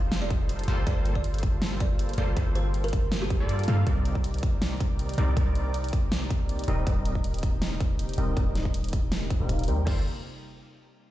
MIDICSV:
0, 0, Header, 1, 7, 480
1, 0, Start_track
1, 0, Key_signature, -2, "minor"
1, 0, Tempo, 375000
1, 1110, Time_signature, 4, 2, 24, 8
1, 14220, End_track
2, 0, Start_track
2, 0, Title_t, "Kalimba"
2, 0, Program_c, 0, 108
2, 277, Note_on_c, 0, 74, 86
2, 1020, Note_off_c, 0, 74, 0
2, 1111, Note_on_c, 0, 74, 99
2, 1313, Note_off_c, 0, 74, 0
2, 1478, Note_on_c, 0, 74, 84
2, 1675, Note_off_c, 0, 74, 0
2, 2310, Note_on_c, 0, 74, 89
2, 2578, Note_off_c, 0, 74, 0
2, 2790, Note_on_c, 0, 74, 90
2, 3058, Note_off_c, 0, 74, 0
2, 3271, Note_on_c, 0, 72, 87
2, 3472, Note_off_c, 0, 72, 0
2, 3636, Note_on_c, 0, 70, 90
2, 3901, Note_off_c, 0, 70, 0
2, 4117, Note_on_c, 0, 67, 92
2, 4859, Note_off_c, 0, 67, 0
2, 14220, End_track
3, 0, Start_track
3, 0, Title_t, "Supersaw synth"
3, 0, Program_c, 1, 81
3, 0, Note_on_c, 1, 55, 92
3, 0, Note_on_c, 1, 63, 87
3, 0, Note_on_c, 1, 65, 83
3, 0, Note_on_c, 1, 69, 87
3, 0, Note_on_c, 1, 72, 104
3, 842, Note_off_c, 1, 63, 0
3, 842, Note_off_c, 1, 65, 0
3, 843, Note_off_c, 1, 55, 0
3, 843, Note_off_c, 1, 69, 0
3, 843, Note_off_c, 1, 72, 0
3, 869, Note_on_c, 1, 55, 92
3, 869, Note_on_c, 1, 58, 86
3, 869, Note_on_c, 1, 65, 81
3, 869, Note_on_c, 1, 72, 101
3, 870, Note_on_c, 1, 69, 84
3, 1082, Note_off_c, 1, 55, 0
3, 1082, Note_off_c, 1, 58, 0
3, 1082, Note_off_c, 1, 65, 0
3, 1082, Note_off_c, 1, 72, 0
3, 1083, Note_off_c, 1, 69, 0
3, 1109, Note_on_c, 1, 58, 83
3, 1109, Note_on_c, 1, 65, 86
3, 1109, Note_on_c, 1, 69, 87
3, 1109, Note_on_c, 1, 72, 107
3, 2762, Note_off_c, 1, 58, 0
3, 2762, Note_off_c, 1, 65, 0
3, 2762, Note_off_c, 1, 69, 0
3, 2762, Note_off_c, 1, 72, 0
3, 2790, Note_on_c, 1, 55, 94
3, 2790, Note_on_c, 1, 58, 85
3, 2790, Note_on_c, 1, 65, 85
3, 2790, Note_on_c, 1, 69, 82
3, 2790, Note_on_c, 1, 72, 104
3, 3003, Note_off_c, 1, 55, 0
3, 3003, Note_off_c, 1, 58, 0
3, 3003, Note_off_c, 1, 65, 0
3, 3003, Note_off_c, 1, 69, 0
3, 3003, Note_off_c, 1, 72, 0
3, 3030, Note_on_c, 1, 55, 92
3, 3030, Note_on_c, 1, 58, 82
3, 3030, Note_on_c, 1, 65, 85
3, 3030, Note_on_c, 1, 69, 87
3, 3030, Note_on_c, 1, 72, 103
3, 4331, Note_off_c, 1, 55, 0
3, 4331, Note_off_c, 1, 58, 0
3, 4331, Note_off_c, 1, 65, 0
3, 4331, Note_off_c, 1, 69, 0
3, 4331, Note_off_c, 1, 72, 0
3, 4356, Note_on_c, 1, 55, 101
3, 4356, Note_on_c, 1, 58, 89
3, 4356, Note_on_c, 1, 65, 92
3, 4356, Note_on_c, 1, 69, 89
3, 4356, Note_on_c, 1, 74, 111
3, 4682, Note_off_c, 1, 58, 0
3, 4682, Note_off_c, 1, 65, 0
3, 4682, Note_off_c, 1, 69, 0
3, 4682, Note_off_c, 1, 74, 0
3, 4683, Note_off_c, 1, 55, 0
3, 4709, Note_on_c, 1, 55, 85
3, 4709, Note_on_c, 1, 58, 80
3, 4709, Note_on_c, 1, 65, 80
3, 4709, Note_on_c, 1, 69, 84
3, 4709, Note_on_c, 1, 77, 96
3, 4922, Note_off_c, 1, 55, 0
3, 4922, Note_off_c, 1, 58, 0
3, 4922, Note_off_c, 1, 65, 0
3, 4922, Note_off_c, 1, 69, 0
3, 4922, Note_off_c, 1, 77, 0
3, 4949, Note_on_c, 1, 55, 94
3, 4949, Note_on_c, 1, 60, 88
3, 4949, Note_on_c, 1, 63, 81
3, 4949, Note_on_c, 1, 70, 81
3, 4949, Note_on_c, 1, 74, 104
3, 6602, Note_off_c, 1, 55, 0
3, 6602, Note_off_c, 1, 60, 0
3, 6602, Note_off_c, 1, 63, 0
3, 6602, Note_off_c, 1, 70, 0
3, 6602, Note_off_c, 1, 74, 0
3, 6629, Note_on_c, 1, 60, 88
3, 6629, Note_on_c, 1, 63, 81
3, 6629, Note_on_c, 1, 70, 83
3, 6629, Note_on_c, 1, 74, 100
3, 6630, Note_on_c, 1, 55, 92
3, 6842, Note_off_c, 1, 60, 0
3, 6842, Note_off_c, 1, 63, 0
3, 6842, Note_off_c, 1, 70, 0
3, 6842, Note_off_c, 1, 74, 0
3, 6843, Note_off_c, 1, 55, 0
3, 6869, Note_on_c, 1, 55, 92
3, 6869, Note_on_c, 1, 60, 86
3, 6869, Note_on_c, 1, 63, 82
3, 6869, Note_on_c, 1, 70, 89
3, 6869, Note_on_c, 1, 74, 106
3, 8522, Note_off_c, 1, 55, 0
3, 8522, Note_off_c, 1, 60, 0
3, 8522, Note_off_c, 1, 63, 0
3, 8522, Note_off_c, 1, 70, 0
3, 8522, Note_off_c, 1, 74, 0
3, 8549, Note_on_c, 1, 55, 94
3, 8549, Note_on_c, 1, 60, 85
3, 8549, Note_on_c, 1, 63, 91
3, 8549, Note_on_c, 1, 70, 88
3, 8549, Note_on_c, 1, 75, 106
3, 8762, Note_off_c, 1, 55, 0
3, 8762, Note_off_c, 1, 63, 0
3, 8762, Note_off_c, 1, 70, 0
3, 8762, Note_off_c, 1, 75, 0
3, 8763, Note_off_c, 1, 60, 0
3, 8789, Note_on_c, 1, 55, 93
3, 8789, Note_on_c, 1, 60, 83
3, 8789, Note_on_c, 1, 63, 87
3, 8789, Note_on_c, 1, 70, 85
3, 8789, Note_on_c, 1, 75, 102
3, 10442, Note_off_c, 1, 55, 0
3, 10442, Note_off_c, 1, 60, 0
3, 10442, Note_off_c, 1, 63, 0
3, 10442, Note_off_c, 1, 70, 0
3, 10442, Note_off_c, 1, 75, 0
3, 10469, Note_on_c, 1, 55, 92
3, 10469, Note_on_c, 1, 60, 88
3, 10469, Note_on_c, 1, 63, 82
3, 10469, Note_on_c, 1, 70, 86
3, 10469, Note_on_c, 1, 75, 106
3, 10682, Note_off_c, 1, 55, 0
3, 10682, Note_off_c, 1, 60, 0
3, 10682, Note_off_c, 1, 63, 0
3, 10682, Note_off_c, 1, 70, 0
3, 10682, Note_off_c, 1, 75, 0
3, 10708, Note_on_c, 1, 60, 82
3, 10708, Note_on_c, 1, 63, 87
3, 10708, Note_on_c, 1, 70, 87
3, 10709, Note_on_c, 1, 55, 90
3, 10709, Note_on_c, 1, 75, 106
3, 12011, Note_off_c, 1, 55, 0
3, 12011, Note_off_c, 1, 60, 0
3, 12011, Note_off_c, 1, 63, 0
3, 12011, Note_off_c, 1, 70, 0
3, 12011, Note_off_c, 1, 75, 0
3, 12036, Note_on_c, 1, 77, 110
3, 12037, Note_on_c, 1, 55, 96
3, 12037, Note_on_c, 1, 60, 91
3, 12037, Note_on_c, 1, 63, 90
3, 12037, Note_on_c, 1, 70, 86
3, 12363, Note_off_c, 1, 55, 0
3, 12363, Note_off_c, 1, 60, 0
3, 12363, Note_off_c, 1, 63, 0
3, 12363, Note_off_c, 1, 70, 0
3, 12363, Note_off_c, 1, 77, 0
3, 12390, Note_on_c, 1, 55, 92
3, 12390, Note_on_c, 1, 60, 79
3, 12390, Note_on_c, 1, 63, 81
3, 12390, Note_on_c, 1, 70, 83
3, 12391, Note_on_c, 1, 79, 97
3, 12603, Note_off_c, 1, 55, 0
3, 12603, Note_off_c, 1, 60, 0
3, 12603, Note_off_c, 1, 63, 0
3, 12603, Note_off_c, 1, 70, 0
3, 12603, Note_off_c, 1, 79, 0
3, 12630, Note_on_c, 1, 55, 86
3, 12630, Note_on_c, 1, 58, 79
3, 12630, Note_on_c, 1, 65, 77
3, 12630, Note_on_c, 1, 69, 77
3, 12630, Note_on_c, 1, 72, 88
3, 12811, Note_off_c, 1, 55, 0
3, 12811, Note_off_c, 1, 58, 0
3, 12811, Note_off_c, 1, 65, 0
3, 12811, Note_off_c, 1, 69, 0
3, 12811, Note_off_c, 1, 72, 0
3, 14220, End_track
4, 0, Start_track
4, 0, Title_t, "Analog synth pad"
4, 0, Program_c, 2, 89
4, 0, Note_on_c, 2, 51, 82
4, 0, Note_on_c, 2, 60, 75
4, 0, Note_on_c, 2, 65, 76
4, 0, Note_on_c, 2, 67, 90
4, 0, Note_on_c, 2, 69, 72
4, 834, Note_off_c, 2, 51, 0
4, 834, Note_off_c, 2, 60, 0
4, 871, Note_on_c, 2, 48, 79
4, 871, Note_on_c, 2, 58, 77
4, 4899, Note_off_c, 2, 65, 0
4, 4899, Note_off_c, 2, 69, 0
4, 4950, Note_on_c, 2, 51, 74
4, 4950, Note_on_c, 2, 74, 75
4, 8514, Note_off_c, 2, 51, 0
4, 8514, Note_off_c, 2, 74, 0
4, 8550, Note_on_c, 2, 55, 75
4, 8551, Note_on_c, 2, 63, 73
4, 12579, Note_off_c, 2, 48, 0
4, 12579, Note_off_c, 2, 58, 0
4, 12579, Note_off_c, 2, 67, 0
4, 12589, Note_off_c, 2, 55, 0
4, 12589, Note_off_c, 2, 63, 0
4, 14220, End_track
5, 0, Start_track
5, 0, Title_t, "808-style bass"
5, 0, Program_c, 3, 38
5, 0, Note_on_c, 3, 29, 100
5, 847, Note_off_c, 3, 29, 0
5, 870, Note_on_c, 3, 31, 101
5, 1087, Note_off_c, 3, 31, 0
5, 1110, Note_on_c, 3, 31, 90
5, 2768, Note_off_c, 3, 31, 0
5, 2789, Note_on_c, 3, 31, 95
5, 3007, Note_off_c, 3, 31, 0
5, 3030, Note_on_c, 3, 31, 96
5, 4356, Note_on_c, 3, 43, 92
5, 4375, Note_off_c, 3, 31, 0
5, 4687, Note_off_c, 3, 43, 0
5, 4709, Note_on_c, 3, 43, 94
5, 4927, Note_off_c, 3, 43, 0
5, 4950, Note_on_c, 3, 36, 91
5, 6607, Note_off_c, 3, 36, 0
5, 6629, Note_on_c, 3, 36, 95
5, 6847, Note_off_c, 3, 36, 0
5, 6870, Note_on_c, 3, 36, 94
5, 8527, Note_off_c, 3, 36, 0
5, 8550, Note_on_c, 3, 27, 98
5, 8767, Note_off_c, 3, 27, 0
5, 8790, Note_on_c, 3, 27, 96
5, 10447, Note_off_c, 3, 27, 0
5, 10469, Note_on_c, 3, 27, 104
5, 10687, Note_off_c, 3, 27, 0
5, 10710, Note_on_c, 3, 27, 93
5, 12012, Note_off_c, 3, 27, 0
5, 12037, Note_on_c, 3, 27, 88
5, 12390, Note_on_c, 3, 39, 95
5, 12409, Note_off_c, 3, 27, 0
5, 12607, Note_off_c, 3, 39, 0
5, 12630, Note_on_c, 3, 31, 92
5, 12853, Note_off_c, 3, 31, 0
5, 14220, End_track
6, 0, Start_track
6, 0, Title_t, "Downlifter"
6, 0, Program_c, 4, 103
6, 0, Note_on_c, 4, 60, 71
6, 1110, Note_off_c, 4, 60, 0
6, 14220, End_track
7, 0, Start_track
7, 0, Title_t, "Drums"
7, 150, Note_on_c, 9, 38, 117
7, 150, Note_on_c, 9, 42, 74
7, 278, Note_off_c, 9, 38, 0
7, 278, Note_off_c, 9, 42, 0
7, 390, Note_on_c, 9, 36, 112
7, 390, Note_on_c, 9, 42, 63
7, 518, Note_off_c, 9, 36, 0
7, 518, Note_off_c, 9, 42, 0
7, 630, Note_on_c, 9, 42, 75
7, 757, Note_off_c, 9, 42, 0
7, 757, Note_on_c, 9, 42, 52
7, 814, Note_off_c, 9, 42, 0
7, 814, Note_on_c, 9, 42, 67
7, 871, Note_off_c, 9, 42, 0
7, 871, Note_on_c, 9, 42, 65
7, 999, Note_off_c, 9, 42, 0
7, 1110, Note_on_c, 9, 36, 127
7, 1110, Note_on_c, 9, 42, 73
7, 1238, Note_off_c, 9, 36, 0
7, 1238, Note_off_c, 9, 42, 0
7, 1350, Note_on_c, 9, 42, 65
7, 1477, Note_on_c, 9, 36, 67
7, 1478, Note_off_c, 9, 42, 0
7, 1590, Note_on_c, 9, 42, 79
7, 1605, Note_off_c, 9, 36, 0
7, 1716, Note_off_c, 9, 42, 0
7, 1716, Note_on_c, 9, 42, 47
7, 1773, Note_off_c, 9, 42, 0
7, 1773, Note_on_c, 9, 42, 63
7, 1830, Note_off_c, 9, 42, 0
7, 1830, Note_on_c, 9, 36, 108
7, 1830, Note_on_c, 9, 42, 61
7, 1958, Note_off_c, 9, 36, 0
7, 1958, Note_off_c, 9, 42, 0
7, 2070, Note_on_c, 9, 38, 120
7, 2070, Note_on_c, 9, 42, 71
7, 2198, Note_off_c, 9, 38, 0
7, 2198, Note_off_c, 9, 42, 0
7, 2309, Note_on_c, 9, 42, 57
7, 2310, Note_on_c, 9, 36, 118
7, 2437, Note_off_c, 9, 42, 0
7, 2438, Note_off_c, 9, 36, 0
7, 2549, Note_on_c, 9, 42, 78
7, 2676, Note_off_c, 9, 42, 0
7, 2676, Note_on_c, 9, 42, 51
7, 2733, Note_off_c, 9, 42, 0
7, 2733, Note_on_c, 9, 42, 61
7, 2789, Note_off_c, 9, 42, 0
7, 2789, Note_on_c, 9, 42, 62
7, 2917, Note_off_c, 9, 42, 0
7, 3029, Note_on_c, 9, 42, 77
7, 3030, Note_on_c, 9, 36, 126
7, 3157, Note_off_c, 9, 42, 0
7, 3158, Note_off_c, 9, 36, 0
7, 3269, Note_on_c, 9, 42, 67
7, 3397, Note_off_c, 9, 42, 0
7, 3509, Note_on_c, 9, 42, 78
7, 3636, Note_off_c, 9, 42, 0
7, 3636, Note_on_c, 9, 42, 47
7, 3693, Note_off_c, 9, 42, 0
7, 3693, Note_on_c, 9, 42, 61
7, 3750, Note_off_c, 9, 42, 0
7, 3750, Note_on_c, 9, 36, 109
7, 3750, Note_on_c, 9, 42, 62
7, 3878, Note_off_c, 9, 36, 0
7, 3878, Note_off_c, 9, 42, 0
7, 3990, Note_on_c, 9, 38, 115
7, 3990, Note_on_c, 9, 42, 70
7, 4118, Note_off_c, 9, 38, 0
7, 4118, Note_off_c, 9, 42, 0
7, 4229, Note_on_c, 9, 36, 109
7, 4230, Note_on_c, 9, 42, 58
7, 4357, Note_off_c, 9, 36, 0
7, 4358, Note_off_c, 9, 42, 0
7, 4470, Note_on_c, 9, 42, 75
7, 4596, Note_off_c, 9, 42, 0
7, 4596, Note_on_c, 9, 42, 50
7, 4653, Note_off_c, 9, 42, 0
7, 4653, Note_on_c, 9, 42, 65
7, 4710, Note_off_c, 9, 42, 0
7, 4710, Note_on_c, 9, 42, 63
7, 4838, Note_off_c, 9, 42, 0
7, 4949, Note_on_c, 9, 36, 115
7, 4949, Note_on_c, 9, 42, 76
7, 5077, Note_off_c, 9, 36, 0
7, 5077, Note_off_c, 9, 42, 0
7, 5189, Note_on_c, 9, 42, 63
7, 5316, Note_on_c, 9, 36, 65
7, 5317, Note_off_c, 9, 42, 0
7, 5430, Note_on_c, 9, 42, 75
7, 5444, Note_off_c, 9, 36, 0
7, 5557, Note_off_c, 9, 42, 0
7, 5557, Note_on_c, 9, 42, 49
7, 5613, Note_off_c, 9, 42, 0
7, 5613, Note_on_c, 9, 42, 60
7, 5670, Note_off_c, 9, 42, 0
7, 5670, Note_on_c, 9, 36, 112
7, 5670, Note_on_c, 9, 42, 63
7, 5798, Note_off_c, 9, 36, 0
7, 5798, Note_off_c, 9, 42, 0
7, 5910, Note_on_c, 9, 38, 110
7, 5910, Note_on_c, 9, 42, 70
7, 6038, Note_off_c, 9, 38, 0
7, 6038, Note_off_c, 9, 42, 0
7, 6150, Note_on_c, 9, 36, 108
7, 6150, Note_on_c, 9, 42, 63
7, 6278, Note_off_c, 9, 36, 0
7, 6278, Note_off_c, 9, 42, 0
7, 6390, Note_on_c, 9, 42, 77
7, 6518, Note_off_c, 9, 42, 0
7, 6518, Note_on_c, 9, 42, 49
7, 6574, Note_off_c, 9, 42, 0
7, 6574, Note_on_c, 9, 42, 63
7, 6630, Note_off_c, 9, 42, 0
7, 6630, Note_on_c, 9, 42, 62
7, 6758, Note_off_c, 9, 42, 0
7, 6870, Note_on_c, 9, 36, 119
7, 6870, Note_on_c, 9, 42, 75
7, 6998, Note_off_c, 9, 36, 0
7, 6998, Note_off_c, 9, 42, 0
7, 7110, Note_on_c, 9, 42, 67
7, 7238, Note_off_c, 9, 42, 0
7, 7350, Note_on_c, 9, 42, 77
7, 7477, Note_off_c, 9, 42, 0
7, 7477, Note_on_c, 9, 42, 49
7, 7533, Note_off_c, 9, 42, 0
7, 7533, Note_on_c, 9, 42, 65
7, 7590, Note_off_c, 9, 42, 0
7, 7590, Note_on_c, 9, 36, 109
7, 7590, Note_on_c, 9, 42, 64
7, 7718, Note_off_c, 9, 36, 0
7, 7718, Note_off_c, 9, 42, 0
7, 7831, Note_on_c, 9, 38, 108
7, 7831, Note_on_c, 9, 42, 75
7, 7959, Note_off_c, 9, 38, 0
7, 7959, Note_off_c, 9, 42, 0
7, 8070, Note_on_c, 9, 36, 103
7, 8071, Note_on_c, 9, 42, 59
7, 8198, Note_off_c, 9, 36, 0
7, 8199, Note_off_c, 9, 42, 0
7, 8310, Note_on_c, 9, 42, 78
7, 8438, Note_off_c, 9, 42, 0
7, 8438, Note_on_c, 9, 42, 53
7, 8494, Note_off_c, 9, 42, 0
7, 8494, Note_on_c, 9, 42, 63
7, 8551, Note_off_c, 9, 42, 0
7, 8551, Note_on_c, 9, 42, 65
7, 8679, Note_off_c, 9, 42, 0
7, 8790, Note_on_c, 9, 36, 115
7, 8790, Note_on_c, 9, 42, 82
7, 8918, Note_off_c, 9, 36, 0
7, 8918, Note_off_c, 9, 42, 0
7, 9030, Note_on_c, 9, 42, 71
7, 9157, Note_on_c, 9, 36, 58
7, 9158, Note_off_c, 9, 42, 0
7, 9270, Note_on_c, 9, 42, 84
7, 9285, Note_off_c, 9, 36, 0
7, 9397, Note_off_c, 9, 42, 0
7, 9397, Note_on_c, 9, 42, 50
7, 9454, Note_off_c, 9, 42, 0
7, 9454, Note_on_c, 9, 42, 68
7, 9510, Note_off_c, 9, 42, 0
7, 9510, Note_on_c, 9, 36, 107
7, 9510, Note_on_c, 9, 42, 65
7, 9638, Note_off_c, 9, 36, 0
7, 9638, Note_off_c, 9, 42, 0
7, 9750, Note_on_c, 9, 38, 108
7, 9750, Note_on_c, 9, 42, 81
7, 9878, Note_off_c, 9, 38, 0
7, 9878, Note_off_c, 9, 42, 0
7, 9990, Note_on_c, 9, 36, 106
7, 9991, Note_on_c, 9, 42, 62
7, 10118, Note_off_c, 9, 36, 0
7, 10119, Note_off_c, 9, 42, 0
7, 10230, Note_on_c, 9, 42, 77
7, 10356, Note_off_c, 9, 42, 0
7, 10356, Note_on_c, 9, 42, 51
7, 10413, Note_off_c, 9, 42, 0
7, 10413, Note_on_c, 9, 42, 69
7, 10470, Note_off_c, 9, 42, 0
7, 10470, Note_on_c, 9, 42, 66
7, 10598, Note_off_c, 9, 42, 0
7, 10710, Note_on_c, 9, 36, 119
7, 10710, Note_on_c, 9, 42, 87
7, 10838, Note_off_c, 9, 36, 0
7, 10838, Note_off_c, 9, 42, 0
7, 10950, Note_on_c, 9, 38, 36
7, 10950, Note_on_c, 9, 42, 73
7, 11077, Note_on_c, 9, 36, 60
7, 11078, Note_off_c, 9, 38, 0
7, 11078, Note_off_c, 9, 42, 0
7, 11190, Note_on_c, 9, 42, 80
7, 11205, Note_off_c, 9, 36, 0
7, 11317, Note_off_c, 9, 42, 0
7, 11317, Note_on_c, 9, 42, 54
7, 11374, Note_off_c, 9, 42, 0
7, 11374, Note_on_c, 9, 42, 69
7, 11430, Note_on_c, 9, 36, 105
7, 11431, Note_off_c, 9, 42, 0
7, 11431, Note_on_c, 9, 42, 72
7, 11558, Note_off_c, 9, 36, 0
7, 11559, Note_off_c, 9, 42, 0
7, 11671, Note_on_c, 9, 38, 112
7, 11671, Note_on_c, 9, 42, 80
7, 11799, Note_off_c, 9, 38, 0
7, 11799, Note_off_c, 9, 42, 0
7, 11910, Note_on_c, 9, 36, 102
7, 11911, Note_on_c, 9, 42, 68
7, 12038, Note_off_c, 9, 36, 0
7, 12039, Note_off_c, 9, 42, 0
7, 12150, Note_on_c, 9, 36, 57
7, 12151, Note_on_c, 9, 42, 84
7, 12277, Note_off_c, 9, 42, 0
7, 12277, Note_on_c, 9, 42, 55
7, 12278, Note_off_c, 9, 36, 0
7, 12334, Note_off_c, 9, 42, 0
7, 12334, Note_on_c, 9, 42, 71
7, 12390, Note_off_c, 9, 42, 0
7, 12390, Note_on_c, 9, 42, 68
7, 12518, Note_off_c, 9, 42, 0
7, 12630, Note_on_c, 9, 36, 115
7, 12630, Note_on_c, 9, 49, 89
7, 12758, Note_off_c, 9, 36, 0
7, 12758, Note_off_c, 9, 49, 0
7, 14220, End_track
0, 0, End_of_file